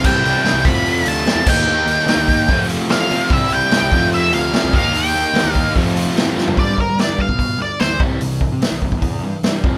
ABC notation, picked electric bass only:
X:1
M:4/4
L:1/16
Q:1/4=147
K:C
V:1 name="Picked electric bass" clef=bass
C,, z C,, z G,, C,, F,,4 D,,2 z E,, _E,,2- | _E,,2 E,, z _E, E,,2 z F,,3 A,,2 z F, z | C,, z C,, z G,, C,, F,,4 D,,2 z C,, _E,,2- | _E,,2 E,, z _E, E,,2 z F,,3 A,, A,,2 G,,2 |
G,,2 z G, z G,,2 B,,3 D,, z D,,2 C,,2 | C,,2 z C, z C,,2 E,,3 G,, z G,,2 F,,2 |]